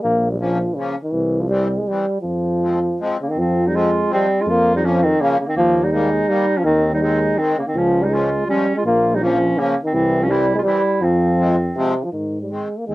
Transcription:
0.02 0.76 A#1 medium
0.02 0.29 A#3 loud
0.31 0.39 G3 medium
0.40 0.77 F3 medium
0.40 0.58 F3 medium
0.40 0.58 A#3 medium
0.40 0.58 C#4 medium
0.75 0.95 C#3 medium
0.75 0.95 F3 medium
0.75 0.95 A#3 soft
0.79 0.96 C#4 medium
1.03 1.13 D#3 medium
1.11 1.85 C2 medium
1.11 1.42 E3 medium
1.40 1.49 F3 medium
1.49 1.67 E3 medium
1.49 1.79 G3 medium
1.49 1.68 G3 medium
1.49 1.68 C4 medium
1.77 1.89 G#3 medium
1.88 2.05 E3 medium
1.88 2.21 G3 medium
1.88 2.06 G3 soft
1.88 2.06 C4 medium
2.22 2.97 F2 medium
2.22 3.04 F3 medium
2.62 2.79 F3 medium
2.62 2.79 G#3 medium
2.62 2.80 C4 medium
3.00 3.17 F3 medium
3.00 3.17 G#3 medium
3.00 3.17 C4 medium
3.21 3.30 C#3 medium
3.21 3.32 A#3 medium
3.28 3.40 D#3 medium
3.28 3.39 C4 medium
3.36 4.08 F2 medium
3.36 3.70 F3 medium
3.36 3.68 C4 medium
3.67 3.77 G3 medium
3.67 3.77 D#4 medium
3.73 3.90 F3 medium
3.73 3.91 G#3 medium
3.73 4.11 G#3 medium
3.73 3.91 C4 medium
3.73 4.11 F4 medium
4.09 4.27 F3 medium
4.09 4.27 G#3 medium
4.09 4.27 C4 medium
4.13 4.43 G3 medium
4.13 4.43 C4 medium
4.41 4.52 G#3 medium
4.41 4.49 F4 medium
4.46 5.18 F2 loud
4.46 4.75 A#3 loud
4.46 4.76 F4 medium
4.76 4.87 G3 medium
4.76 4.86 D#4 medium
4.83 5.00 F3 medium
4.83 5.06 F3 loud
4.83 5.01 A#3 soft
4.83 5.01 C#4 medium
4.83 5.04 C#4 medium
5.02 5.22 D#3 loud
5.02 5.22 C4 medium
5.20 5.39 C#3 loud
5.20 5.37 F3 medium
5.20 5.39 A#3 medium
5.20 5.38 A#3 medium
5.20 5.38 C#4 medium
5.39 5.47 C#3 medium
5.39 5.48 A#3 medium
5.47 5.55 D#3 medium
5.47 5.56 C4 medium
5.55 6.26 D#2 medium
5.55 5.85 F3 loud
5.55 5.85 A#3 medium
5.84 5.94 G3 medium
5.84 5.91 D#4 medium
5.91 6.09 D#3 medium
5.91 6.10 G3 soft
5.91 6.30 G#3 loud
5.91 6.10 A#3 medium
5.91 6.28 D#4 medium
6.28 6.45 D#3 medium
6.28 6.45 G3 medium
6.28 6.60 G3 loud
6.28 6.46 A#3 medium
6.28 6.58 D#4 loud
6.57 6.64 F3 medium
6.57 6.64 C#4 medium
6.64 7.36 D#2 loud
6.64 6.90 D#3 loud
6.64 6.91 C4 medium
6.94 7.03 G3 medium
6.94 7.02 D#4 medium
7.00 7.18 D#3 medium
7.00 7.39 G#3 medium
7.00 7.19 G#3 medium
7.00 7.19 C4 medium
7.00 7.39 D#4 medium
7.38 7.57 D#3 medium
7.38 7.56 D#3 medium
7.38 7.56 G#3 soft
7.38 7.57 C4 medium
7.57 7.61 C#3 medium
7.57 7.63 A#3 medium
7.67 7.78 D#3 medium
7.67 7.79 C4 medium
7.74 8.46 C#2 medium
7.74 8.03 F3 loud
7.74 8.05 C#4 medium
8.02 8.11 G3 medium
8.02 8.15 D#4 medium
8.09 8.29 F3 soft
8.09 8.47 G#3 medium
8.09 8.29 G#3 soft
8.09 8.30 C#4 medium
8.14 8.49 F4 medium
8.47 8.66 F3 medium
8.47 8.74 G3 medium
8.47 8.66 G#3 medium
8.47 8.75 C#4 medium
8.47 8.67 C#4 medium
8.75 8.84 G#3 medium
8.75 8.85 F4 medium
8.84 9.54 A#1 medium
8.84 9.17 A#3 loud
8.84 9.16 F4 medium
9.15 9.22 G3 medium
9.15 9.22 D#4 medium
9.20 9.38 F3 medium
9.20 9.60 F3 medium
9.20 9.38 A#3 medium
9.20 9.39 C#4 medium
9.20 9.60 C#4 medium
9.57 9.76 C#3 medium
9.57 9.74 F3 medium
9.57 9.74 A#3 medium
9.57 9.77 A#3 medium
9.57 9.75 C#4 medium
9.83 9.94 D#3 medium
9.83 9.94 C4 medium
9.93 10.63 C2 medium
9.93 10.23 E3 loud
9.93 10.25 C4 medium
10.22 10.30 F3 medium
10.22 10.33 C#4 medium
10.28 10.45 E3 medium
10.28 10.46 G3 medium
10.28 10.55 G3 loud
10.28 10.46 C4 medium
10.28 10.57 E4 medium
10.55 10.59 G#3 medium
10.55 10.62 F4 medium
10.63 10.81 E3 medium
10.63 11.03 G3 loud
10.63 10.81 G3 soft
10.63 10.82 C4 medium
10.67 11.05 E4 medium
11.01 11.74 F2 loud
11.01 11.59 F3 medium
11.01 11.96 C4 medium
11.38 11.55 F3 medium
11.38 11.56 G#3 medium
11.38 11.56 C4 medium
11.76 12.05 C3 loud
11.76 11.93 F3 medium
11.76 11.94 G#3 medium
11.76 11.94 C4 medium
12.04 12.11 F3 medium
12.12 12.62 G#2 medium
12.12 12.39 D#3 medium
12.42 12.53 G3 medium
12.50 12.68 D#3 soft
12.50 12.68 G#3 soft
12.50 12.80 G#3 medium
12.50 12.69 C4 soft
12.78 12.86 A#3 medium
12.87 12.95 D#2 medium
12.87 12.95 D#3 soft
12.87 12.95 G#3 medium
12.87 12.95 G#3 soft
12.87 12.95 C4 soft

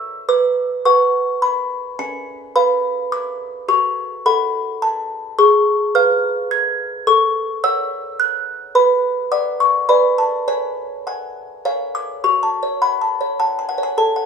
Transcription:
0.00 0.25 C#5 medium
0.00 0.25 E5 medium
0.00 0.26 E6 loud
0.29 0.84 B4 medium
0.29 0.83 D6 loud
0.85 1.95 B4 medium
0.85 1.96 F#5 medium
0.85 1.40 C#6 loud
1.42 1.97 B5 loud
1.99 2.54 C#4 medium
1.99 2.54 G#5 loud
2.56 3.65 B4 medium
2.56 3.65 F5 medium
2.56 3.10 B5 loud
3.12 3.67 D6 loud
3.68 4.24 F#4 medium
3.68 4.23 C#6 medium
4.26 5.35 A4 medium
4.26 5.35 F#5 medium
4.26 4.80 B5 loud
4.82 5.36 A5 loud
5.39 5.93 G#4 medium
5.39 5.93 C#6 loud
5.95 7.03 B4 medium
5.95 7.03 F5 medium
5.95 6.49 F6 loud
6.51 7.05 G#6 loud
7.07 7.62 A4 medium
7.07 7.61 C#6 loud
7.64 8.72 C#5 medium
7.64 8.72 F#5 medium
7.64 8.17 E6 loud
8.20 8.74 F#6 loud
8.75 9.30 B4 medium
8.75 9.30 B5 loud
9.32 9.85 D5 medium
9.32 9.86 F#5 medium
9.32 9.59 D6 loud
9.60 9.88 C#6 loud
9.89 10.46 B4 medium
9.89 10.44 D5 medium
9.89 10.44 G#5 medium
9.89 10.17 B5 loud
10.18 10.47 A5 loud
10.48 11.05 C#5 medium
10.48 11.06 G#5 medium
11.07 11.62 F#5 medium
11.07 11.62 G#5 medium
11.65 12.22 C#5 medium
11.65 12.20 F5 medium
11.65 12.21 G#5 medium
11.95 12.23 D6 loud
12.24 13.94 F#4 medium
12.24 12.80 C#6 medium
12.43 12.74 A5 medium
12.63 12.94 C#5 medium
12.82 13.13 F#5 medium
12.82 13.38 B5 loud
13.01 13.32 A5 medium
13.21 13.52 C#5 medium
13.40 13.67 F#5 medium
13.40 13.68 A5 loud
13.59 13.78 G#5 medium
13.69 13.83 F#5 medium
13.78 13.97 C#5 medium
13.83 13.98 G#5 medium
13.98 14.26 A4 medium
13.98 14.26 A5 loud
14.16 14.26 F#5 medium

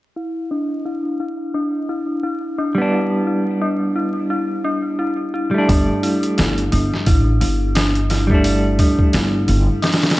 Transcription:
0.16 0.36 E4 medium
0.51 0.84 D4 medium
0.85 1.05 E4 medium
1.20 1.39 E4 medium
1.54 1.88 D4 medium
1.89 2.08 E4 medium
2.23 2.43 E4 medium
2.58 2.91 D4 medium
2.75 5.48 G3 medium
2.75 5.49 B3 medium
2.82 5.51 D4 medium
2.92 3.11 E4 medium
3.27 3.46 E4 medium
3.61 3.95 D4 medium
3.96 4.15 E4 medium
4.30 4.49 E4 medium
4.64 4.98 D4 medium
4.99 5.18 E4 medium
5.34 5.53 E4 medium
5.51 8.24 G3 medium
5.51 8.25 A3 medium
5.58 8.27 D4 medium
5.69 5.87 G1 medium
5.69 6.02 D4 medium
5.69 kick loud
5.69 open hi-hat medium
6.03 6.22 E4 medium
6.03 open hi-hat medium
6.23 closed hi-hat soft
6.38 6.69 G1 medium
6.38 6.57 E4 medium
6.38 snare loud
6.38 open hi-hat medium
6.58 closed hi-hat soft
6.72 6.90 G1 medium
6.72 7.05 D4 medium
6.72 open hi-hat medium
6.94 snare soft
7.06 7.38 A1 medium
7.06 7.26 E4 medium
7.06 kick loud
7.06 open hi-hat medium
7.41 8.76 G1 medium
7.41 7.60 E4 medium
7.41 open hi-hat medium
7.75 8.09 D4 medium
7.75 snare loud
7.75 open hi-hat medium
7.95 closed hi-hat soft
8.10 8.29 E4 medium
8.10 snare soft
8.10 open hi-hat medium
8.27 10.20 G3 medium
8.27 10.20 A3 medium
8.27 kick medium
8.34 10.20 D4 medium
8.44 8.64 E4 medium
8.44 open hi-hat medium
8.79 9.12 D4 medium
8.79 kick medium
8.79 open hi-hat medium
8.99 kick medium
9.13 9.45 G1 medium
9.13 9.33 E4 medium
9.13 snare medium
9.13 open hi-hat medium
9.48 9.66 G1 medium
9.48 9.67 E4 medium
9.48 open hi-hat medium
9.82 10.16 D4 loud
9.82 snare medium
9.82 open hi-hat medium
9.92 snare medium
9.92 open hi-hat medium
10.02 snare medium
10.02 open hi-hat medium
10.10 snare medium
10.10 open hi-hat medium

